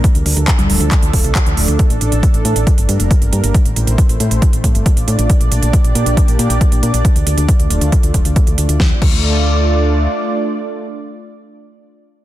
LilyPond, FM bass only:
\new Staff \with { instrumentName = "FM bass" } { \clef bass \time 4/4 \key d \minor \tempo 4 = 137 r16 d,16 d,16 d,16 r16 d,16 d,,16 d,16 r16 d,16 d,,16 c,16 r16 d,16 d,,16 d,16 | r16 a,,16 a,,16 a,,16 r16 a,,16 a,16 a,,16 r16 g,,16 g,16 f,,16 r16 g,,16 g,16 g,,16 | r16 a,,16 a,,16 a,,16 r16 a,,16 a,16 a,,16 r16 a,,16 a,16 g,,16 r16 a,,16 a,16 a,,16 | r16 bes,,16 bes,,16 bes,,16 r16 bes,,16 bes,16 bes,,16 r16 bes,,16 bes,16 bes,,16 r16 bes,,16 bes,16 bes,,16 |
r16 d,16 d,16 d,16 r16 d,16 d,,16 d,16 r16 d,16 d,,16 d,16 r16 d,16 d,16 d,16 | r8 d,2~ d,8 r4 | r1 | }